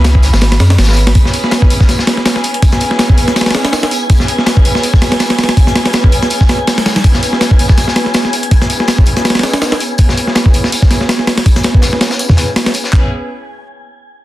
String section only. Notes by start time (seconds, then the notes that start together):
Already playing: B3 C#4 E4 G#4 B4
0.88 B3 C#4 E4 G#4 B4
1.15 B3 C#4 E4 G#4 B4
2.07 B3 C#4 E4 G#4 B4
2.26 B3 C#4 E4 G#4 B4
2.62 B3 C#4 E4 G#4 B4
3.54 B3 C#4 E4 G#4 B4
3.73 B3 C#4 E4 G#4 B4
4.09 B3 C#4 E4 G#4 B4
5.02 B3 C#4 E4 G#4 B4
5.20 B3 C#4 E4 G#4 B4
5.57 B3 C#4 E4 G#4 B4
6.49 B3 C#4 E4 G#4 B4
6.68 B3 C#4 E4 G#4 B4
7.04 B3 C#4 E4 G#4 B4
7.96 B3 C#4 E4 G#4 B4
8.14 B3 C#4 E4 G#4 B4
8.51 B3 C#4 E4 G#4 B4
9.44 B3 C#4 E4 G#4 B4
9.62 B3 C#4 E4 G#4 B4
9.99 B3 C#4 E4 G#4 B4
10.91 B3 C#4 E4 G#4 B4
11.10 B3 C#4 E4 G#4 B4
11.46 B3 C#4 E4 G#4 B4
12.38 B3 C#4 E4 G#4 B4
12.56 B3 C#4 E4 G#4 B4
12.93 B3 C#4 E4 G#4 B4